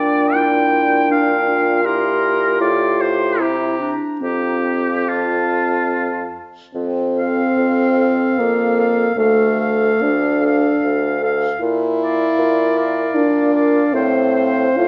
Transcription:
Already playing: A#2 D4 D5 G5
0.34 E4 G5
1.10 D4 F5
1.48 F4
1.84 E4 G4 A#4 C6
2.59 A2 F4 D5
3.01 C5
3.39 C3 E4 G4 A#5
3.80 D4
4.21 F2 C4 F4 G4
5.08 F4 A5
6.75 F2 C4
7.16 A4 F5
7.58 F2
7.99 A4 F5
8.39 F2 A#3
8.77 A4 F5
9.16 D2 A3 A4 F5
9.58 A4 F5
10.02 D2 D4
10.42 A4 F5
10.83 D2
11.22 A4 F5
11.61 A#2 E4
11.99 A#4 F5
12.04 D5
12.39 A#2
12.76 A#4 D5 F5
13.15 A#2 D4
13.52 A#4 D5 F5
13.93 A2 C4 C5 F5
14.35 C5 F5
14.77 A2 F4

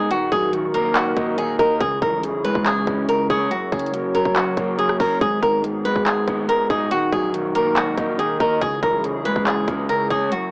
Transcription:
Already playing: D#1 G#2 G#3 B3 D#4
0.10 D#3 F#4 A#4, closed hi-hat
0.32 D#1 F#3 G#4, kick, closed hi-hat
0.53 D#3, closed hi-hat
0.74 A#3 A#4, closed hi-hat
0.96 D#3 F#4, clap, closed hi-hat
1.17 D#1 D#4, kick, closed hi-hat
1.38 D#3 G#4, closed hi-hat
1.49 E1
1.59 D#2 A#4 D#5, kick, closed hi-hat
1.81 C#2 C#3 C#4 E4 G#4, kick, closed hi-hat
2.02 C#2 E3 A#4, kick, closed hi-hat
2.23 C#3, closed hi-hat
2.45 G#3 B4, closed hi-hat
2.55 C#2, kick
2.66 C#3 G#4, clap, closed hi-hat
2.87 C#2 C#4, kick, closed hi-hat
3.08 C#3 A#4, closed hi-hat
3.30 F#1 G#4 C#5, kick, closed hi-hat
3.51 F#2 F#3 F#4 A#4 C#5, closed hi-hat
3.72 F#1 C#3 G#4, kick, closed hi-hat
3.79 closed hi-hat
3.86 closed hi-hat
3.94 F#2, closed hi-hat
4.15 F#3 A#4, closed hi-hat
4.25 F#1, kick
4.36 F#2 F#4, clap, closed hi-hat
4.57 F#1 A#3, kick, closed hi-hat
4.79 F#2 G#4, closed hi-hat
4.89 cross-stick
5.00 F#1 C#4 A#4, kick, open hi-hat
5.21 G#1 G#2 B3 D#4 G#4, kick, closed hi-hat
5.42 G#1 D#3 A#4, kick, closed hi-hat
5.64 G#2, closed hi-hat
5.85 B1 G#3 B4, closed hi-hat
5.96 G#1, kick
6.06 G#2 G#4, clap, closed hi-hat
6.27 G#1 B3, kick, closed hi-hat
6.49 G#2 A#4, closed hi-hat
6.70 D#1 D#4 G#4, kick, closed hi-hat
6.91 D#3 F#4 A#4, closed hi-hat
7.13 D#1 F#3 G#4, kick, closed hi-hat
7.34 D#3, closed hi-hat
7.55 A#3 A#4, closed hi-hat
7.76 D#3 F#4, clap, closed hi-hat
7.98 D#1 D#4, kick, closed hi-hat
8.19 D#3 G#4, closed hi-hat
8.30 E1
8.40 D#2 A#4 D#5, kick, closed hi-hat
8.62 C#2 C#3 C#4 E4 G#4, kick, closed hi-hat
8.83 C#2 E3 A#4, kick, closed hi-hat
9.04 C#3, closed hi-hat
9.25 G#3 B4, closed hi-hat
9.36 C#2, kick
9.47 C#3 G#4, clap, closed hi-hat
9.68 C#2 C#4, kick, closed hi-hat
9.89 C#3 A#4, closed hi-hat
10.10 F#1 G#4 C#5, kick, closed hi-hat
10.32 F#2 F#3 F#4 A#4 C#5, closed hi-hat

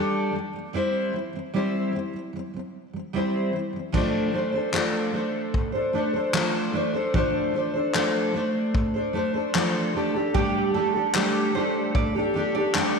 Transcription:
Already playing: G3 A3 D4 G4 A4
0.33 G3 A3
0.53 G3 A3
0.73 G3 C4 E4 C5
1.13 G3 C4
1.33 G3 C4
1.54 G3 C4 E4 C5
1.93 G3 C4
2.13 G3 C4
2.33 G3 C4
2.54 G3 C4
2.93 G3 C4
3.13 G3 C4 E4 C5
3.53 G3 C4
3.73 G3 C4
3.92 F3 A3 D4 A4 C5, kick, crash
4.32 A3 D4 A4 C5
4.52 D4 A4 C5
4.72 F3 A3 D4 A4 C5, clap
5.13 A3 D4 A4 C5
5.54 kick
5.72 D4 A4 C5
5.93 A3 D4 A4 C5
6.13 D4 A4 C5
6.33 F3 A3 D4 A4 C5, clap
6.73 A3 D4 A4 C5
6.94 D4 A4 C5
7.14 F3 A3 D4 A4 C5, kick
7.54 A3 D4 A4 C5
7.74 D4 A4 C5
7.94 F3 A3 D4 A4 C5, clap
8.34 A3 D4 A4 C5
8.75 kick
8.94 D4 A4 C5
9.13 A3 D4 A4 C5
9.34 D4 A4 C5
9.54 F3 A3 D4 A4 C5, clap
9.94 A3 D4 G4 A4
10.14 D4 G4 A4
10.34 G3 A3 D4 G4 A4, kick
10.74 A3 D4 G4 A4
10.93 D4 G4 A4
11.14 G3 A3 D4 G4 A4, clap
11.55 A3 D4 G4 A4 C5
11.95 D5, kick
12.15 D4 G4 A4
12.34 A3 D4 G4 A4
12.55 D4 G4 A4 D5
12.74 G3 A3 D4 G4 A4, clap

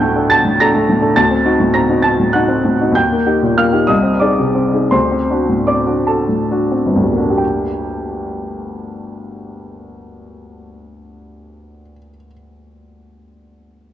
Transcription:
Already playing: D2 A2 A3 D4 A4 F#5 G5 F#6 G6
0.02 A3
0.16 D4 A4
0.30 A5 A6
0.45 A2
0.60 D4 A4 A#5 A#6
0.74 A3
0.89 A2
1.02 D4 A4
1.16 D2 A5 A6
1.31 C4
1.45 D#4 F#4
1.60 A2
1.74 C4 A#5 A#6
1.89 D#4 F#4
2.03 A5 A6
2.19 A2
2.33 D#4 F#4 F#5 F#6
2.48 C4
2.65 A2
2.81 D#4 F#4
2.92 D#2 G6
2.97 G5
3.12 A#3
3.26 D#4 G4
3.42 A#2
3.57 A#3 F5 F6
3.72 D#4 G4
3.87 C2 D#5 D#6
4.03 C4
4.20 D#4 G#4 D5 D6
4.39 C3
4.55 C4
4.73 D#4 G#4
4.91 D2 C5 C6
5.12 C4
5.31 D4 F#4
5.49 A2
5.67 C4 D5 D6
5.87 D4 F#4
6.07 A4 A5
6.29 A2
6.51 D4 F#4
6.72 C4
6.86 G1
6.95 D2 A2
7.03 G3
7.13 A#3 F#4
7.17 D4
7.21 D4
7.30 G4
7.38 G5

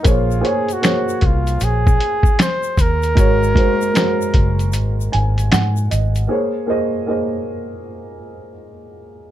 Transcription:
Already playing: D#4
0.03 A#1 A#3 G#4 C5 C#5, kick, closed hi-hat, shaker
0.09 F4
0.31 shaker
0.40 A#3 G#4 C5 C#5
0.45 G#4, closed hi-hat
0.68 closed hi-hat, shaker
0.73 F#4
0.81 A#3 G#4 C5 C#5, finger snap, snare, closed hi-hat, shaker
1.09 shaker
1.21 C2, kick, closed hi-hat
1.26 F4
1.47 closed hi-hat, shaker
1.60 A#1 G#4, closed hi-hat, shaker
1.87 kick, shaker
2.00 closed hi-hat
2.23 kick, shaker
2.39 C5, finger snap, snare, closed hi-hat, shaker
2.63 shaker
2.77 D#2 A#4, kick, closed hi-hat, shaker
3.03 closed hi-hat, shaker
3.15 G#1 G#3 F#4 A#4 C#5, kick, closed hi-hat, shaker
3.43 shaker
3.54 G#3 F#4 A#4 C5, kick, closed hi-hat
3.82 shaker
3.94 G#3 F#4 A#4 C5, finger snap, snare, closed hi-hat, shaker
4.22 shaker
4.34 F#1, kick, closed hi-hat
4.59 closed hi-hat, shaker
4.73 G#1, closed hi-hat, shaker
5.01 shaker
5.12 G#1 G#5, closed hi-hat
5.38 closed hi-hat, shaker
5.51 G#2 F#5, finger snap, snare, closed hi-hat, shaker
5.77 shaker
5.91 G#1 D#5, closed hi-hat, shaker
6.16 closed hi-hat, shaker
6.27 A#3 G#4 C5 C#5
6.66 A#3 G#4 C5 D#5
7.06 A#3 G#4 C5 D#5

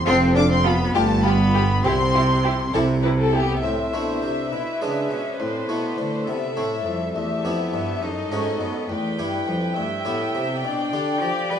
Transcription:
0.06 F1 F2 C4 F4 A4 C6
0.35 D4 F4 A4 D6
0.49 C4 C6
0.64 B3 F4 A4 B5
0.94 G1 G2 A3 F4 G4 A5
1.23 B3 F4 G4 B5
1.54 F4 G4
1.83 C2 C3 C4 E4 G4 C6
2.15 E4 G4
2.44 E4 G4
2.74 C2 C3 E4 G4 A4
3.03 E4 B4
3.19 A4
3.33 B3 E4 G4
3.63 A2 C4 C5 E5
3.93 B2 A3 C4 D4 E4
4.23 C3
4.52 B2 E4 B4 D5
4.81 C#3 G#3 B3 D4
5.10 B2 C#4
5.40 A2 C4 C5
5.68 B2 A3 B3 E4
5.97 D3 A3
6.26 C3 B3 A4 E5
6.56 A2 A3 C4 E4
6.85 F2 G3
7.14 E2 A3 G4 E5 A5
7.43 F2 B3 E4 G4
7.73 G2
8.01 F#2 D#4 A4 D#5
8.30 G#2 A3 C#4 D#4 F#4
8.60 F#2 B3
8.89 E2 A3 B4 G5
9.18 G2 G3 E4 G4
9.47 F2 G3
9.76 G2 A3 E5
10.05 A2 B3 E4 G4
10.35 C3
10.63 B2 D4 D5 G5
10.92 D3 D4 G4
11.21 F3 G4
11.50 G3 B4 G5

